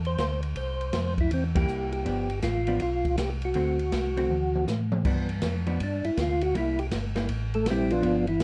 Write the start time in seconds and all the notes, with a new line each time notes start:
Already playing: E2
0.05 C5, ride
0.18 D2, kick, snare, hi-hat pedal, ride
0.43 ride
0.56 C2 C5, kick, ride
0.81 ride
0.93 F2, kick, snare, hi-hat pedal, ride
1.18 E4, kick, ride
1.31 E2 C4, kick, ride
1.55 G3 A#3 E4 G4, kick, ride
1.68 C2, hi-hat pedal
1.92 G4, ride
2.05 G1 F3 B3 D4, kick, ride
2.30 ride
2.42 A1 F4, kick, snare, hi-hat pedal, ride
2.67 F3 B3 D4, ride
2.80 B1 F4, kick, ride
3.05 kick, ride
3.18 C2 G4, kick, snare, hi-hat pedal, ride
3.42 F#4, ride
3.54 D2 D3 A3 C4 F#4, kick, ride
3.79 ride
3.92 C2, kick, snare, hi-hat pedal, ride
4.17 D3 A3 C4 F#4, ride
4.29 D2, mid tom
4.55 mid tom
4.67 A2, snare, hi-hat pedal
4.92 mid tom
5.05 G2 F3 B3 D4, kick, crash
5.29 ride
5.42 F2, kick, snare, hi-hat pedal, ride
5.67 F3 B3 D4, ride
5.80 G2 D4, kick, ride
6.04 G2 E4, ride
6.17 D2 F4, kick, snare, hi-hat pedal, ride
6.41 F#4, ride
6.54 C2 G3 A#3 E4, kick, ride
6.79 G4, ride
6.91 G1, kick, snare, hi-hat pedal, ride
7.16 G3 A#3 E4, snare, ride
7.29 A1, kick, ride
7.54 A3 A4, ride
7.66 A#1, kick, snare, hi-hat pedal, ride
7.70 G3 C4 E4 G4
7.90 F3 B3 D4 F4, ride
8.02 G1 F3 B3 D4, kick, ride
8.27 E3 E4, ride
8.40 B1, kick, snare, hi-hat pedal, ride